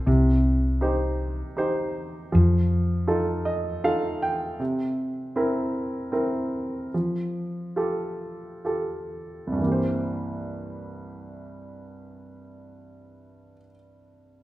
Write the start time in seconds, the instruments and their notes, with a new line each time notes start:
0.06 fingered electric bass C2, grand piano C3
0.81 grand piano D#4 G4 C5
1.57 grand piano D#4 G4 C5
2.32 fingered electric bass F2, grand piano F3
3.07 grand piano D#4 F4 A4
3.45 grand piano D#5
3.84 grand piano D#4 F4 A4 F5
4.22 grand piano G5
4.59 grand piano C3
5.36 grand piano C4 E4 A#4
6.12 grand piano C4 E4 A#4
6.94 grand piano F3
7.76 grand piano F4 G4 A4
8.65 grand piano F4 G4 A4
9.47 grand piano C2
9.52 grand piano G2
9.56 grand piano E3
9.61 grand piano A#3
9.67 grand piano G4
9.72 grand piano C5